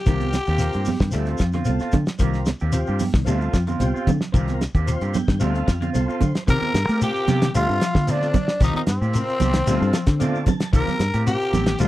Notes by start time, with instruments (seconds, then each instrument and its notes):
Already playing: tenor saxophone G4
0.06 fingered electric bass C2, clean electric guitar D#3 A#3 C4 G4, tonewheel organ C4 F4 A#4, kick, snare, closed hi-hat, shekere
0.21 closed hi-hat, high conga, shekere
0.33 snare, closed hi-hat, high conga, shekere
0.46 fingered electric bass D#2, clean electric guitar A#3 C4 G4, closed hi-hat, shekere
0.58 clean electric guitar C3, tonewheel organ C4 F4 A#4, closed hi-hat, shekere
0.73 fingered electric bass G2, clean electric guitar A#3 C4, muted clean electric guitar stroke, closed hi-hat, shekere
0.85 open hi-hat, high conga, low conga, shekere
0.99 fingered electric bass G2, clean electric guitar D#3, kick, snare, shekere
1.11 fingered electric bass D2, clean electric guitar G3 A3 C4, tonewheel organ C4 F4 A4, muted clean electric guitar stroke, closed hi-hat, shekere
1.26 clean electric guitar C4 F4, closed hi-hat, shekere
1.38 fingered electric bass F2, clean electric guitar F3, kick, snare, closed hi-hat, shekere
1.52 clean electric guitar D3 C4 F4, snare, closed hi-hat, high conga, shekere
1.65 fingered electric bass C2, tonewheel organ C4 F4 A4, closed hi-hat, high conga, shekere
1.79 clean electric guitar C4 F4, snare, shekere
1.92 clean electric guitar C3, fingered electric bass D3, kick, snare, closed hi-hat, high conga, low conga, shekere
2.06 snare, closed hi-hat, shekere
2.18 fingered electric bass C2, clean electric guitar D#3 A#3 G4, tonewheel organ C4 F4 A#4, muted clean electric guitar stroke, kick, closed hi-hat, shekere
2.34 snare, shekere
2.46 snare, closed hi-hat, high conga, shekere
2.60 fingered electric bass D#2, clean electric guitar A#3 C4 G4, shekere
2.72 clean electric guitar C3, tonewheel organ C4 F4 G4, closed hi-hat, shekere
2.87 fingered electric bass G2, clean electric guitar A#3 C4 G4, shekere
2.99 open hi-hat, high conga, low conga, shekere
3.14 fingered electric bass C2, clean electric guitar D#3, kick, snare, shekere
3.25 fingered electric bass D2, clean electric guitar G3 A3 C4, tonewheel organ C4 F4 A4, closed hi-hat, high conga, shekere
3.29 clean electric guitar F4
3.41 clean electric guitar C4 F4, shekere
3.53 fingered electric bass F2, clean electric guitar F3, kick, snare, closed hi-hat, shekere
3.67 clean electric guitar D3 C4 F4, closed hi-hat, high conga, shekere
3.79 fingered electric bass C2, tonewheel organ C4 F4 G4, closed hi-hat, high conga, shekere
3.94 clean electric guitar C4 F4, shekere
4.07 clean electric guitar C3, fingered electric bass D3, kick, closed hi-hat, high conga, low conga, shekere
4.21 snare, shekere
4.32 fingered electric bass C2, clean electric guitar D#3 A#3 C4 G4, tonewheel organ C4 F4 A#4, kick, closed hi-hat, shekere
4.48 snare, closed hi-hat, high conga, shekere
4.61 snare, closed hi-hat, high conga, shekere
4.75 fingered electric bass D#2, clean electric guitar A#3 C4 G4, kick, closed hi-hat, shekere
4.86 clean electric guitar C3, tonewheel organ C4 F4 C5, closed hi-hat, shekere
5.01 fingered electric bass G2, clean electric guitar A#3 C4 G4, closed hi-hat, shekere
5.14 tonewheel organ G5, snare, closed hi-hat, high conga, low conga, shekere
5.28 fingered electric bass G2, clean electric guitar D#3, kick, snare, shekere
5.39 fingered electric bass D2, clean electric guitar G3 A3 C4 F4, tonewheel organ C4 F4 A4 F5, closed hi-hat, high conga, shekere
5.55 clean electric guitar C4 F4, closed hi-hat, shekere
5.68 fingered electric bass F2, clean electric guitar F3, kick, snare, closed hi-hat, shekere
5.81 clean electric guitar D3 C4 F4, closed hi-hat, high conga, shekere
5.93 fingered electric bass C2, tonewheel organ C4 F4 A4 C5, closed hi-hat, high conga, shekere
6.08 clean electric guitar C4 F4, shekere
6.21 fingered electric bass D3, kick, closed hi-hat, high conga, low conga, shekere
6.35 snare, closed hi-hat, shekere
6.47 fingered electric bass C3, clean electric guitar D#3 A#3 C4 G4, tonewheel organ C4 F4 A#4, tenor saxophone A#4, kick, closed hi-hat, shekere
6.62 muted fingered electric bass stroke, high conga, shekere
6.74 fingered electric bass G2, snare, closed hi-hat, high conga, shekere
6.88 fingered electric bass A3, clean electric guitar A#3 C4 G4, snare, closed hi-hat, shekere
7.00 clean electric guitar C3, tonewheel organ C4 F4 A#4, tenor saxophone G4, closed hi-hat, shekere
7.16 shekere
7.28 fingered electric bass C3, clean electric guitar D#3 A#3 C4 G4, snare, closed hi-hat, high conga, low conga, shekere
7.41 clean electric guitar D#3, snare, closed hi-hat, shekere
7.54 fingered electric bass D2, clean electric guitar G3 A3 C4 F4, tonewheel organ C4 F4 A4, tenor saxophone F4, closed hi-hat, shekere
7.67 fingered electric bass G2, clean electric guitar C4 F4, shekere
7.81 clean electric guitar F3, snare, closed hi-hat, shekere
7.95 clean electric guitar D3, fingered electric bass D3, kick, snare, high conga, shekere
8.07 clean electric guitar A3 C4 F4, tonewheel organ C4 F4 A4, tenor saxophone D4, closed hi-hat, high conga, shekere
8.12 tenor saxophone D4
8.21 snare, shekere
8.34 muted clean electric guitar stroke, kick, closed hi-hat, high conga, low conga, shekere
8.48 snare, shekere
8.60 fingered electric bass C2, clean electric guitar D#3 G4, tonewheel organ C4 F4 A#4, muted clean electric guitar stroke, kick, closed hi-hat, shekere
8.64 tenor saxophone D#4
8.74 tenor saxophone D#4, high conga, shekere
8.87 fingered electric bass G2, tenor saxophone C4, snare, closed hi-hat, high conga, shekere
9.01 fingered electric bass A2, clean electric guitar A#3 C4 G4, shekere
9.13 clean electric guitar C3, tonewheel organ C4 F4 A#4, closed hi-hat, shekere
9.29 shekere
9.40 fingered electric bass C2, clean electric guitar D#3 A#3 G4, muted clean electric guitar stroke, closed hi-hat, high conga, low conga, shekere
9.53 clean electric guitar D#3, snare, closed hi-hat, shekere
9.67 fingered electric bass D2, clean electric guitar G3 A3 C4 F4, tonewheel organ C4 F4 A4, closed hi-hat, high conga, shekere
9.81 fingered electric bass G2, clean electric guitar C4 F4, shekere
9.93 clean electric guitar F3, snare, closed hi-hat, shekere
10.07 fingered electric bass D3, clean electric guitar D3, kick, snare, closed hi-hat, shekere
10.19 clean electric guitar A3 C4 F4, tonewheel organ C4 F4 A4 D5, snare, closed hi-hat, high conga, shekere
10.35 shekere
10.46 clean electric guitar C3, tonewheel organ A5, kick, closed hi-hat, high conga, low conga, shekere
10.60 snare, closed hi-hat, shekere
10.72 fingered electric bass C2, clean electric guitar D#3 A#3 C4 G4, tonewheel organ C4 F4 A#4, tenor saxophone A#4, kick, closed hi-hat, shekere
10.87 snare, high conga, low conga, shekere
10.99 fingered electric bass G2, snare, closed hi-hat, high conga, shekere
11.14 fingered electric bass A2, clean electric guitar A#3 C4 G4, closed hi-hat, shekere
11.26 clean electric guitar C3, tonewheel organ C4 F4 A#4, tenor saxophone G4, closed hi-hat, shekere
11.41 shekere
11.53 fingered electric bass A1, clean electric guitar D#3 C4 G4, closed hi-hat, high conga, low conga, shekere
11.66 clean electric guitar D#3, snare, closed hi-hat, shekere
11.79 fingered electric bass D2, clean electric guitar F3 G3 A3 C4 F4, tonewheel organ C4 F4 A4, tenor saxophone F4, closed hi-hat, shekere
11.83 tenor saxophone F4